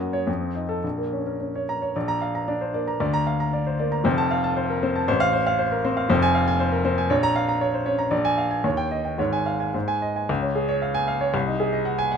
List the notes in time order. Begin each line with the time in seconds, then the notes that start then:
Already playing: F#2 A#3
0.00 F#4
0.13 C#5
0.27 F2
0.41 C4
0.55 D#4
0.69 A4
0.84 A#1
0.98 A#3
1.13 C#4
1.27 A#4
1.41 C#4
1.55 C#5
1.69 A#5
1.82 C#5
1.96 A#1 D5
2.08 A#5
2.21 F5
2.35 A#5
2.48 D4 D5
2.61 C5
2.74 A#3 D5
2.87 A#5
3.00 D2 D5
3.13 A#5
3.27 F5
3.40 A#5
3.53 D5
3.67 C5
3.79 A#3 D5
3.92 A#5
4.04 F1 F2 C5
4.18 A5
4.31 F5
4.44 A5
4.57 C5
4.70 A#4
4.83 C4 C5
4.96 A5
5.08 A1 C5
5.20 F5
5.33 C5
5.46 F5
5.59 C5
5.72 A#4
5.85 C4 C5
5.97 F5
6.09 F1 F2 C5
6.22 G#5
6.35 F5
6.47 G#5
6.60 C5
6.72 A#4
6.85 C4 C5
6.98 G#5
7.10 A#1 C#5
7.23 A#5
7.36 F5
7.49 A#5
7.61 C#5
7.74 C5
7.86 C#4 C#5
7.98 A#5
8.11 A#1 D5
8.25 G#5
8.38 F5
8.51 G#5
8.64 D#2 C#5
8.77 G5
8.91 D#5
9.05 G5
9.18 G#1 G#2 C#5
9.33 G#5
9.46 F5
9.60 G#5
9.74 G#2 C5
9.88 G#5
10.02 D#5
10.16 G#5
10.29 C#2
10.42 C#4
10.55 G#4
10.69 C#5
10.82 F5
10.94 G#5
11.08 F5
11.21 C#5
11.34 C2
11.47 D#4
11.60 G#4
11.73 D#5
11.85 F#5
11.98 G#5
12.12 F#5